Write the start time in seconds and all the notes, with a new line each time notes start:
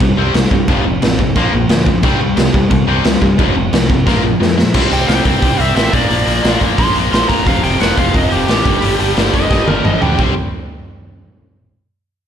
0.00 C2 C3 G3, kick, crash
0.17 C2 C3 G3 C4
0.34 C2 C3 G3, snare, crash
0.51 G2 C3 G3, kick
0.68 F1 F2 C3 F3, kick, crash
0.85 F1 F2 C3
1.02 A1 F2 C3, snare, crash
1.19 F2 C3, kick
1.35 A#1 A#2 F3 A#3, kick, crash
1.53 A#1 A#2 F3
1.69 D2 A#2 F3, snare, crash
1.86 A#2 F3, kick
2.03 C2 C3 G3 C4, kick, crash
2.20 C2 C3 G3
2.37 C2 C3 G3, snare, crash
2.54 C2 C3 G3, kick
2.71 C2 C3 G3, kick, crash
2.87 C2 C3 G3 C4
3.04 C2 C3 G3, snare, crash
3.21 G2 C3 G3, kick
3.38 F1 F2 C3 F3, kick, crash
3.56 F1 F2 C3
3.73 C2 F2 C3, snare, crash
3.90 F2 C3, kick
4.07 A#1 A#2 F3 A#3, kick, snare
4.23 A#1 A#2 F3
4.40 F2 A#2 F3, snare
4.58 A#2 F3, snare
4.74 C2 C3 G3 C4, kick, crash
4.91 C2 C3 G3 C4 G5, open hi-hat
5.08 C2 C3 G3 C4 G5, snare, open hi-hat
5.25 C2 C3 G3 C4, kick, open hi-hat
5.42 C2 C3 G3 C4, kick, open hi-hat
5.59 C2 C3 G3 C4 E5, open hi-hat
5.76 A1 C3 G3 C4 E5, snare, open hi-hat
5.92 A#1 A#2 F3 A#3 D5, kick, open hi-hat
6.09 A#1 A#2 F3 A#3, open hi-hat
6.26 A#1 A#2 F3 A#3, open hi-hat
6.43 A#1 A#2 F3 A#3, snare, open hi-hat
6.61 A#1 A#2 F3 A#3, kick, open hi-hat
6.78 A#1 A#2 F3 A#3 C6, kick, open hi-hat
6.95 A#1 A#2 F3 A#3, open hi-hat
7.11 A#1 A#2 F3 A#3 C6, snare, open hi-hat
7.28 A#1 A#2 F3 A#3 A#5, kick, open hi-hat
7.46 F1 F2 C3 F3 F5, kick, open hi-hat
7.63 F1 F2 C3 F3 G5, open hi-hat
7.80 F1 F2 C3 F3 F#5, snare, open hi-hat
7.97 F1 F2 C3 F3 F5, kick, open hi-hat
8.13 F1 F2 C3 F3 D#5, kick, open hi-hat
8.30 F1 F2 C3 F3 G4, open hi-hat
8.48 A1 F2 C3 F3 G4, snare, open hi-hat
8.64 G1 G2 D3 G3, kick, open hi-hat
8.82 G1 G2 D3 G3, open hi-hat
8.99 G1 G2 D3 G3, open hi-hat
9.16 G1 G2 D3 G3, snare, open hi-hat
9.33 G1 G2 D3 G3 D#5, kick, open hi-hat
9.50 G1 G2 D3 G3, kick, snare
9.67 G1 G2 D3 G3 A#4, high tom
9.84 G1 G2 D3 G3 D#5, mid tom
10.01 D2 G2 D3 G3 G5, floor tom
10.18 C2 C3 G3 C4, kick